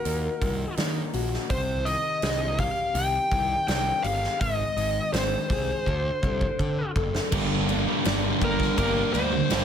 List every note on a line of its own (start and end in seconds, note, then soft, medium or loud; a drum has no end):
0.00 0.41 D#3 medium
0.00 0.77 A#3 medium
0.00 1.12 F#4 medium
0.00 0.74 A#4 medium
0.05 0.27 D#2 medium
0.05 2.95 D#4 medium
0.05 open hi-hat medium
0.42 0.64 C2 medium
0.42 1.51 D#3 medium
0.42 kick medium
0.42 open hi-hat soft
0.77 1.00 D#3 medium
0.77 1.51 A#3 medium
0.77 snare loud
0.77 open hi-hat medium
1.14 1.36 A#1 medium
1.14 1.50 F#4 medium
1.14 open hi-hat soft
1.33 snare soft
1.50 1.95 C2 medium
1.50 3.32 C3 medium
1.50 1.88 C5 medium
1.50 kick loud
1.50 open hi-hat medium
1.85 3.31 D#3 medium
1.85 2.59 D#5 medium
1.85 open hi-hat soft
2.22 2.67 C2 medium
2.22 3.68 G3 medium
2.22 snare loud
2.22 open hi-hat medium
2.58 4.03 G4 medium
2.58 2.97 F5 medium
2.58 kick medium
2.58 open hi-hat soft
2.95 3.17 C2 medium
2.95 4.41 D#4 medium
2.95 3.66 G5 loud
2.95 open hi-hat medium
3.31 3.54 C2 medium
3.31 4.41 D#3 medium
3.31 kick medium
3.31 open hi-hat soft
3.68 3.90 C2 medium
3.68 4.41 G3 medium
3.68 4.06 G5 loud
3.68 snare loud
3.68 open hi-hat medium
4.03 4.26 G1 medium
4.03 4.41 G4 medium
4.03 4.38 F5 medium
4.03 open hi-hat soft
4.24 snare soft
4.41 4.63 G#1 medium
4.41 5.86 G#2 medium
4.41 5.10 D#5 medium
4.41 kick loud
4.41 open hi-hat medium
4.76 4.99 G#1 medium
4.76 5.87 D#3 medium
4.76 open hi-hat soft
5.13 5.35 G#1 medium
5.13 5.87 C4 medium
5.13 6.91 C5 medium
5.13 snare loud
5.13 open hi-hat medium
5.50 5.72 C2 medium
5.50 5.87 G#4 medium
5.50 kick medium
5.50 open hi-hat soft
5.86 6.09 D2 medium
5.86 6.23 D3 medium
5.86 kick medium
6.23 6.45 C2 medium
6.23 7.32 D3 medium
6.23 kick medium
6.41 kick medium
6.59 6.81 D3 medium
6.59 7.32 C4 medium
6.59 kick medium
6.96 7.18 F#1 medium
6.96 7.32 A4 medium
6.96 kick medium
7.15 snare medium
7.32 7.84 G1 loud
7.32 8.04 G2 medium
7.32 9.14 G2 medium
7.32 8.04 D3 medium
7.32 7.88 G3 loud
7.32 7.88 A#3 medium
7.32 7.87 D4 medium
7.32 7.86 G4 loud
7.32 kick loud
7.32 crash loud
7.49 7.67 G3 medium
7.49 7.69 A#3 medium
7.49 7.69 D4 medium
7.67 8.03 D3 medium
7.67 8.04 G3 medium
7.67 8.41 A#3 medium
7.67 8.05 A#3 medium
7.67 8.06 D4 medium
7.67 ride medium
7.87 8.05 G3 medium
7.87 8.06 A#3 medium
7.87 8.05 D4 medium
7.87 8.06 G4 medium
8.05 8.31 G1 medium
8.05 8.77 G2 loud
8.05 8.78 D3 loud
8.05 8.40 G3 medium
8.05 8.41 A#3 loud
8.05 8.76 D4 medium
8.05 8.41 D4 loud
8.05 8.42 G4 loud
8.05 snare loud
8.05 ride loud
8.22 8.40 G3 medium
8.22 8.41 A#3 medium
8.22 8.40 D4 medium
8.41 8.67 G1 medium
8.41 8.60 G3 medium
8.41 8.59 A#3 medium
8.41 9.49 A#3 medium
8.41 8.59 D4 medium
8.41 8.58 G4 medium
8.41 8.77 A#4 medium
8.41 muted distorted electric guitar stroke soft
8.41 kick medium
8.41 ride medium
8.59 8.97 G3 medium
8.59 8.95 A#3 medium
8.59 8.94 D4 medium
8.59 muted distorted electric guitar stroke medium
8.59 kick medium
8.59 snare soft
8.77 9.04 G1 medium
8.77 9.12 G3 medium
8.77 9.13 A#3 medium
8.77 9.64 D4 medium
8.77 9.13 D4 medium
8.77 9.14 G4 medium
8.77 9.13 A#4 medium
8.77 kick loud
8.77 ride medium
8.95 9.13 G3 medium
8.95 9.14 A#3 medium
8.95 9.15 D4 medium
9.13 9.40 D2 medium
9.13 9.49 D3 medium
9.13 9.32 G3 medium
9.13 9.64 G3 medium
9.13 9.31 A#3 medium
9.13 9.31 D4 medium
9.13 9.31 G4 medium
9.13 9.64 C5 medium
9.13 ride medium
9.32 muted distorted electric guitar stroke medium
9.50 9.64 G1 medium
9.50 9.64 G2 medium
9.50 9.64 D3 medium
9.50 9.64 G3 medium
9.50 9.64 A#3 medium
9.50 9.64 D4 medium
9.50 9.64 G4 medium
9.50 snare loud
9.50 ride medium